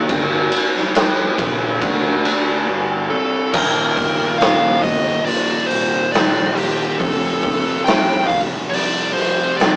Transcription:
Already playing: G3 A4 D5
0.09 G1 G2 D3, kick, ride
0.52 ride
0.76 snare
0.95 snare, ride
1.38 A#1 A#2 F3 A#3, kick, ride
1.82 D2 D3 A3 D4 D5, kick, ride
2.25 ride
2.68 G2 D3 G3
3.10 C3 G3 C4 A4
3.52 D#1 D#2 A#2 D#3 A#3 F4 A#4, kick, crash
3.57 D#3
3.97 G1, kick, open hi-hat
4.38 D#1 F5, snare, open hi-hat
4.83 G1 D#5, kick, open hi-hat
5.25 A#1 D#2 A#2 D#3 D5, open hi-hat
5.67 C2 D#3 C5, open hi-hat
5.72 D#2 A#2
6.12 A#1 D#2 A#2 D#3 D5, snare, open hi-hat
6.55 G4, open hi-hat
6.99 F1 F2 C3 F3 C4 G4 A4, kick, open hi-hat
7.43 kick, open hi-hat
7.84 A1 G5, open hi-hat
7.88 snare
8.27 F5, kick, open hi-hat
8.70 C2 F2 D5, open hi-hat
8.74 C3 F3
9.13 C3 F3 C5, open hi-hat
9.18 F2
9.57 F1 F2 C3 D5, open hi-hat
9.61 F3, snare

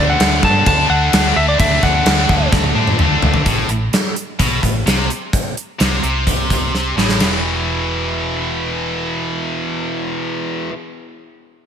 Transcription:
Already playing: D2 D3 A3 D4 D5
0.10 F#5
0.20 D2, snare, crash
0.43 G2 A5, kick
0.66 D2 A5, kick, crash
0.89 D2 D3 A3 D4 F#5
1.12 D2 D3 A3, snare, crash
1.16 D4
1.36 D2 E5
1.48 D5
1.58 D2 D3 A3 D4 E5, kick, crash
1.83 D2 F#5, kick
2.05 D2, snare, crash
2.29 D2, kick
2.52 D2, kick, snare
2.64 high tom
2.75 A2 A3 D4
2.79 D3
2.87 mid tom
2.99 D2 D3 A3 D4, mid tom
3.22 D2, floor tom
3.34 floor tom
3.46 A1 A2, kick, closed hi-hat
3.68 A1 A2, closed hi-hat
3.93 muted distorted electric guitar stroke, snare, closed hi-hat
4.16 closed hi-hat
4.39 B1 B2, kick, closed hi-hat
4.63 A1 A2, kick, closed hi-hat
4.86 C2 C3, snare, closed hi-hat
5.10 closed hi-hat
5.33 kick, closed hi-hat
5.57 closed hi-hat
5.79 C2 C3, snare, closed hi-hat
6.03 C2 C3, closed hi-hat
6.27 kick, closed hi-hat
6.50 kick, closed hi-hat
6.75 snare
6.97 A1 A2, snare
7.09 snare
7.19 E1 E2 B2, snare, crash
7.23 E3

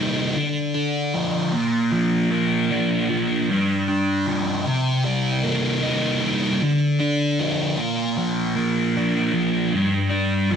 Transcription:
Already playing: C3 G3 A#3 D#4
0.35 D3
0.74 D4
1.14 F3
1.53 A#2
1.91 F3
2.31 A#3
2.71 D4
3.09 F3
3.48 G2
3.88 D4
4.27 F3
4.65 C3
5.04 G3
5.43 A#3
5.82 D#4
6.21 G3
6.62 D3
6.99 D4
7.39 F3
7.78 A#2
8.17 F3
8.56 A#3
8.96 D4
9.33 F3
9.73 G2
10.10 D4
10.50 F3

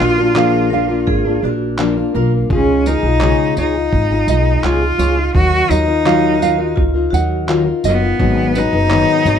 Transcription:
Already playing: F4
0.00 A#1 A#3 D4 F4 F#4 A#4 D5, clap
0.18 A#3 D4 F4 A#4
0.34 A#2 F3 A#3 D4 F4 G#4 A#4 F5, clap
0.70 A#3 D4 F4 A#4 F5
0.75 A#4
0.89 A#3 D4 F4 A#4
1.07 G#1 G#4, kick
1.25 A#3 D4 F4 A#4
1.42 A#1 A#3 D4 F#4 A#4 D5
1.78 A#2 F3 A#3 D4 F4 A#4, clap
1.97 A#3 D4 F4 A#4
2.14 B1 A#3 D4 F4 A#4
2.50 C#2 C#3 G#3 C#4 D#4 F4 G#4, kick
2.86 G#3 D#4 F4 G#4 A#4, tambourine
3.03 B1 F4 G#4
3.07 D#4
3.21 C#3 G#3 D#4 F4 G#4 C#5, clap
3.57 C#2 G#3 D#4 F4 G#4 C#5, tambourine
3.74 D#4 F4 G#4
3.93 G#1, kick
4.11 D#4 F4 G#4
4.27 B1 G#3 D#4 F4 G#4 D#5, tambourine
4.63 C#2 C#3 G#3 D#4 F4 G#4 C#5, clap
4.82 D#4 F4 G#4
4.98 C#2 G#3 D#4 F4 G#4 C#5, tambourine
5.15 D#4 F4 G#4
5.34 D#2 D#3 F#3 D#4 F#4 A#4, kick
5.69 D#2 F#3 D#4 F4 A#4 D#5, tambourine
5.87 D#4 F4 A#4
6.05 D#3 F#3 D#4 F4 A#4 F5, clap
6.40 F#3 D#4 F4 F#4 A#4 F5, tambourine
6.58 D#4 F4 A#4
6.76 C#2 F4, kick
6.94 D#4 F4 A#4
7.10 D#2 F#3 D#4 F#4 F#5, tambourine
7.15 A#4
7.47 D#3 F#3 D#4 F4 A#4, clap
7.65 D#4 F4 A#4
7.84 F#1 F#3 B3 D#4 F4 A#4 D#5, tambourine
8.01 D#4 F4 A#4
8.19 G#1 G#2 D#3 F#3 B3 D#4 G#4, kick
8.55 F#3 B3 D#4 G#4 B4, tambourine
8.73 F#1 F#3 B3 D#4 G#4
8.90 G#2 D#3 F#3 B3 D#4 G#4 C#5, clap
9.25 G#1 F#3 B3 D#4 G#4 C#5, tambourine

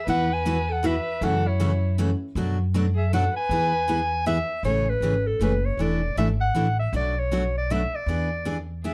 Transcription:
0.07 E2 E3 B3 E4 F#4 B4 F#5
0.32 B4 G#5
0.45 E3 B3 E4 F#4 B4
0.69 A4 F#5
0.83 E3 B3 E4 F#4 B4 E5
1.21 F#2 C#3 E3 A3 C#4 F#4 A4 F#5
1.46 E4 C#5
1.60 C#3 E3 A3 C#4 F#4
1.98 C#3 E3 A3 C#4 F#4
2.35 F#2 B2 F#3 A3 D4 F#4
2.74 B2 F#3 A3 D4 F#4
2.95 G#4 E5
3.11 B2 F#3 A3 D4 F#4 A4 F#5
3.35 B4 G#5
3.49 E2 E3 B3 E4 G#4
3.88 E3 B3 E4 G#4
4.26 E3 B3 E4 G#4 E5
4.63 A1 C#3 E3 A3 C#4 G#4 C#5
4.89 B4
5.01 G#1 C#3 E3 A3 C#4 G#4
5.27 A4
5.39 F#1 C#3 E3 A3 C#4 G#4 B4
5.65 C#5
5.77 E1 E3 A3 D4 E4 A4
5.82 D5
6.16 G#1 E3 A3 D4 E4 A4 E5
6.41 F#5
6.54 A1 E3 A3 D4 E4 A4
6.79 E5
6.93 B1 B2 F#3 A3 D4 F#4 D5
7.19 C#5
7.31 B2 F#3 A3 D4 F#4
7.58 D5
7.70 B2 F#3 A3 D4 F#4 E5
7.95 D5
8.06 E2 E3 B3 D4 G#4
8.45 E3 B3 D4 G#4
8.84 E3 B3 D4 G#4 E5

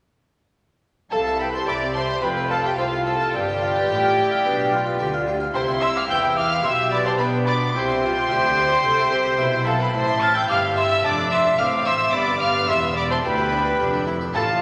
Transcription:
1.11 C2 A4 F5 A5
1.27 E4
1.40 C4 B4 G5 B5
1.53 G4 C5 A5 C6
1.67 C2 C3 E4 G4 D5 B5 D6
1.83 C4
1.94 E4 C5 A5 C6
2.10 C5
2.22 F1 F2 F4 B4 G5 B5
2.37 A4
2.50 F4 A4 F5 A5
2.64 G4 C5 E5 G5
2.78 C2 F4 A4 C5 F5
2.93 F4
3.06 A4 F5 A5
3.21 F5
3.33 G1 G2 G4 D5 G5
3.49 G4
3.61 F4
3.76 B4
3.89 A1 A2 E4 G4
4.03 F4
4.17 G4
4.31 F5
4.44 B1 B2 B3 D4
4.59 G4
4.72 F4
4.86 B4
4.99 D2 D3 G4
5.13 F4
5.27 F4 G4
5.40 F5
5.54 C2 C3 E4 C5 G5 C6
5.68 E4
5.82 C4 E5 C6 E6
5.95 G4 F5 D6 F6
6.08 E2 E3 E4 G5 E6 G6
6.24 C4
6.37 E4 F5 D6 F6
6.52 C5
6.64 B1 B2 G4 E5 C6 E6
6.79 D4
6.91 B3 D5 B5 D6
7.05 G4 C5 A5 C6
7.18 B2 B3 D4 B4 G5 B5
7.33 B3
7.46 D4 D5 B5 D6
7.61 D5
7.74 C2 C3 E4 C5 G5 C6
7.88 E4
8.02 C4 F4
8.15 G4
8.28 D2 D3 E4 G4
8.43 C4
8.56 E4
8.70 C5
8.83 C2 C3 A4
8.98 E4
9.11 C4 G4
9.25 G4
9.38 B1 B2 E4
9.52 C4
9.65 E4 A4 F5 A5
9.79 B4 C5 G5 B5
9.93 A1 A2 E4 C5 A5 C6
10.08 E4
10.19 C4 A5 F6 A6
10.35 A4 G5 E6 G6
10.49 G1 G2 E4 F5 D6 F6
10.62 C4
10.75 E4 E5 C6 E6
10.89 C5
11.03 F1 F2 D4 D5 A5 D6
11.17 A4
11.30 D4 E5 C6 E6
11.44 A4
11.58 A1 A2 C4 D4 F5 D6 F6
11.72 A3
11.86 A4 E5 C6 E6
12.00 D5
12.12 G1 G2 B3 D5 B5 D6
12.28 G4
12.40 D4 F5 D6 F6
12.55 B4
12.69 E1 E2 B3 G4 E5 C6 E6
12.83 D4
12.96 G4 D5 B5 D6
13.10 C5 D5 A5 C6
13.23 D2 B3 E4 B4 G5 B5
13.37 G4
13.51 D4
13.66 B4
13.79 F1 F2 D4 G4
13.94 D4
14.07 E4 G4
14.21 D5
14.34 A1 A2 F4 A4 F5 A5
14.48 F4

